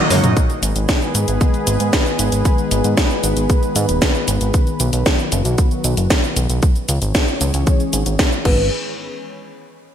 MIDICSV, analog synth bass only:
0, 0, Header, 1, 2, 480
1, 0, Start_track
1, 0, Key_signature, 5, "minor"
1, 0, Tempo, 521739
1, 337, Time_signature, 4, 2, 24, 8
1, 9151, End_track
2, 0, Start_track
2, 0, Title_t, "Analog synth bass"
2, 0, Program_c, 0, 38
2, 95, Note_on_c, 0, 42, 98
2, 193, Note_off_c, 0, 42, 0
2, 216, Note_on_c, 0, 42, 80
2, 313, Note_off_c, 0, 42, 0
2, 575, Note_on_c, 0, 32, 95
2, 673, Note_off_c, 0, 32, 0
2, 696, Note_on_c, 0, 32, 84
2, 794, Note_off_c, 0, 32, 0
2, 1056, Note_on_c, 0, 44, 96
2, 1153, Note_off_c, 0, 44, 0
2, 1177, Note_on_c, 0, 32, 87
2, 1274, Note_off_c, 0, 32, 0
2, 1536, Note_on_c, 0, 32, 92
2, 1634, Note_off_c, 0, 32, 0
2, 1658, Note_on_c, 0, 44, 75
2, 1754, Note_off_c, 0, 44, 0
2, 2017, Note_on_c, 0, 32, 95
2, 2114, Note_off_c, 0, 32, 0
2, 2137, Note_on_c, 0, 32, 82
2, 2234, Note_off_c, 0, 32, 0
2, 2497, Note_on_c, 0, 32, 92
2, 2594, Note_off_c, 0, 32, 0
2, 2616, Note_on_c, 0, 44, 84
2, 2714, Note_off_c, 0, 44, 0
2, 2977, Note_on_c, 0, 32, 94
2, 3074, Note_off_c, 0, 32, 0
2, 3097, Note_on_c, 0, 32, 86
2, 3194, Note_off_c, 0, 32, 0
2, 3457, Note_on_c, 0, 44, 92
2, 3554, Note_off_c, 0, 44, 0
2, 3577, Note_on_c, 0, 27, 77
2, 3674, Note_off_c, 0, 27, 0
2, 3937, Note_on_c, 0, 32, 97
2, 4034, Note_off_c, 0, 32, 0
2, 4057, Note_on_c, 0, 32, 82
2, 4154, Note_off_c, 0, 32, 0
2, 4417, Note_on_c, 0, 35, 93
2, 4514, Note_off_c, 0, 35, 0
2, 4537, Note_on_c, 0, 35, 87
2, 4634, Note_off_c, 0, 35, 0
2, 4895, Note_on_c, 0, 30, 99
2, 4993, Note_off_c, 0, 30, 0
2, 5016, Note_on_c, 0, 35, 86
2, 5113, Note_off_c, 0, 35, 0
2, 5376, Note_on_c, 0, 35, 91
2, 5474, Note_off_c, 0, 35, 0
2, 5497, Note_on_c, 0, 30, 78
2, 5594, Note_off_c, 0, 30, 0
2, 5856, Note_on_c, 0, 35, 95
2, 5953, Note_off_c, 0, 35, 0
2, 5977, Note_on_c, 0, 35, 81
2, 6074, Note_off_c, 0, 35, 0
2, 6336, Note_on_c, 0, 37, 93
2, 6433, Note_off_c, 0, 37, 0
2, 6455, Note_on_c, 0, 32, 85
2, 6553, Note_off_c, 0, 32, 0
2, 6817, Note_on_c, 0, 37, 97
2, 6914, Note_off_c, 0, 37, 0
2, 6937, Note_on_c, 0, 37, 88
2, 7034, Note_off_c, 0, 37, 0
2, 7297, Note_on_c, 0, 32, 90
2, 7394, Note_off_c, 0, 32, 0
2, 7416, Note_on_c, 0, 32, 77
2, 7513, Note_off_c, 0, 32, 0
2, 7777, Note_on_c, 0, 32, 98
2, 8000, Note_off_c, 0, 32, 0
2, 9151, End_track
0, 0, End_of_file